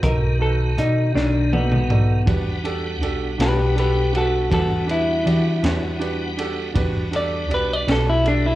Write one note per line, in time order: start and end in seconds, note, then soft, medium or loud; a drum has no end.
0.00 0.74 B1 medium
0.00 2.23 D#3 medium
0.00 2.23 B3 medium
0.00 0.30 D#4 soft
0.00 2.23 F#4 medium
0.00 0.31 F#4 soft
0.00 0.31 A4 soft
0.00 0.39 A#4 medium
0.00 0.31 D#5 medium
0.00 kick loud
0.00 closed hi-hat medium
0.39 0.68 D#4 soft
0.39 0.68 F#4 soft
0.39 0.68 A4 soft
0.39 0.77 A4 medium
0.39 0.69 B4 medium
0.77 1.12 B2 medium
0.77 1.05 D#4 medium
0.77 1.15 D#4 medium
0.77 1.06 F#4 soft
0.77 1.06 A4 soft
0.77 1.06 D5 medium
0.77 closed hi-hat medium
1.14 2.23 B1 medium
1.14 1.52 D4 medium
1.14 1.42 D#4 medium
1.14 1.43 F#4 soft
1.14 1.43 A4 soft
1.14 1.43 D5 medium
1.14 snare soft
1.52 2.25 B3 medium
1.52 1.80 D#4 medium
1.52 1.81 F#4 soft
1.52 1.81 A4 soft
1.52 1.81 D5 medium
1.52 high tom medium
1.72 mid tom medium
1.89 2.18 D#4 soft
1.89 2.18 F#4 soft
1.89 2.18 A4 soft
1.89 2.18 D5 medium
1.89 mid tom medium
2.26 3.02 E2 medium
2.26 6.73 G3 medium
2.26 6.73 B3 medium
2.26 2.55 D4 medium
2.26 6.73 D4 medium
2.26 2.55 F#4 medium
2.26 2.55 G4 medium
2.26 2.55 B4 medium
2.26 6.73 F#5 medium
2.26 kick loud
2.26 ride medium
2.64 2.92 D4 medium
2.64 2.93 F#4 soft
2.64 2.93 G4 medium
2.64 2.93 A4 medium
2.64 ride medium
3.01 3.36 B1 medium
3.01 3.30 D4 medium
3.01 3.30 F#4 medium
3.01 3.30 G4 medium
3.01 3.30 A4 medium
3.01 ride soft
3.38 4.47 B1 medium
3.38 3.67 D4 soft
3.38 3.67 F#4 soft
3.38 3.67 G4 soft
3.38 3.78 G4 medium
3.38 3.67 B4 medium
3.38 snare medium
3.38 ride medium
3.42 3.77 B4 medium
3.75 4.04 D4 soft
3.75 4.04 F#4 soft
3.75 4.05 G4 soft
3.75 4.05 A4 soft
3.75 ride medium
3.79 4.13 G4 medium
3.79 4.14 B4 medium
4.12 4.41 D4 soft
4.12 4.41 F#4 soft
4.12 4.42 G4 soft
4.12 4.42 B4 medium
4.12 ride medium
4.16 4.50 F#4 medium
4.16 4.52 A4 medium
4.50 5.22 E2 medium
4.50 4.79 D4 soft
4.50 4.79 F#4 soft
4.50 4.87 F#4 medium
4.50 4.79 G4 soft
4.50 4.89 A4 medium
4.50 4.79 B4 medium
4.50 kick medium
4.50 ride medium
4.86 5.16 D4 soft
4.86 5.16 F#4 soft
4.86 5.16 G4 soft
4.86 5.16 B4 medium
4.86 ride medium
4.91 6.36 E4 medium
5.24 5.60 E3 medium
5.24 5.53 D4 medium
5.24 5.54 F#4 soft
5.24 5.54 G4 soft
5.24 5.54 D5 medium
5.24 ride medium
5.62 6.72 E2 medium
5.62 5.91 D4 medium
5.62 5.91 F#4 soft
5.62 5.92 G4 soft
5.62 5.92 B4 medium
5.62 snare medium
5.62 ride medium
5.99 6.28 D4 medium
5.99 6.28 F#4 medium
5.99 6.29 G4 medium
5.99 6.29 B4 medium
5.99 ride medium
6.37 6.66 D4 medium
6.37 6.66 F#4 soft
6.37 6.67 G4 medium
6.37 6.67 A4 medium
6.37 ride medium
6.74 7.50 E2 medium
6.74 8.55 G3 medium
6.74 8.55 B3 medium
6.74 7.03 D4 medium
6.74 8.55 D4 medium
6.74 7.03 F#4 medium
6.74 8.55 F#4 medium
6.74 7.04 G4 medium
6.74 7.04 B4 medium
6.74 kick loud
6.74 ride medium
7.11 7.40 D4 soft
7.11 7.41 F#4 soft
7.11 7.41 G4 soft
7.11 7.42 A4 medium
7.11 ride medium
7.16 7.51 D5 medium
7.49 7.85 B1 medium
7.49 7.78 D4 medium
7.49 7.78 F#4 soft
7.49 7.79 G4 soft
7.49 7.79 D5 medium
7.49 ride medium
7.54 7.73 B4 medium
7.73 7.90 D5 medium
7.87 8.55 B1 medium
7.87 8.16 D4 soft
7.87 8.16 F#4 soft
7.87 8.16 G4 soft
7.87 8.16 B4 medium
7.87 snare loud
7.87 ride medium
7.91 8.08 A4 medium
8.10 8.27 E4 medium
8.24 8.53 D4 medium
8.24 8.53 F#4 soft
8.24 8.54 G4 soft
8.24 8.54 A4 medium
8.24 ride medium
8.28 8.45 D4 medium
8.46 8.55 E4 medium